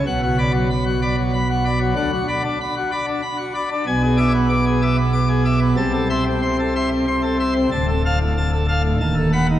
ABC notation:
X:1
M:3/4
L:1/16
Q:1/4=94
K:Bdor
V:1 name="Pipe organ"
f F [db] F, b F [db] F, b F [db] F, | f F [db] D b F [db] D b F [db] D | [K:Am] ^g ^G [ed'] B, d' G [ed'] B, d' G [ed'] B, | a A [ec'] C c' A [ec'] C c' A [ec'] C |
a A [fa] A,, a A [fa] A,, a A [^fb] ^D, |]
V:2 name="Pipe organ" clef=bass
[B,,,B,,]12 | [D,,D,] z8 z3 | [K:Am] [B,,,B,,]12 | [C,,C,]12 |
[D,,,D,,]8 [^D,,,^D,,]4 |]